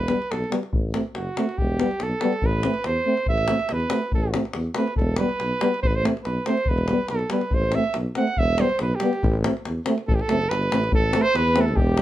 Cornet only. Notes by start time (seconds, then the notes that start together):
Already playing: B4
0.31 A4
1.16 F#4
1.58 G4
2.03 A4
2.46 B4
2.87 C5
3.29 E5
3.73 B4
4.14 A4
4.76 B4
4.97 A4
5.18 B4
5.83 C5
5.87 B4
5.95 C5
6.24 B4
6.46 C5
6.69 B4
7.10 A4
7.32 B4
7.54 C5
7.75 E5
8.17 F#5
8.39 E5
8.61 C5
8.82 B4
8.96 G4
10.08 A4
10.15 G4
10.21 A4
10.49 B4
10.95 A4
11.22 C5
11.36 B4
11.61 A4
11.76 G4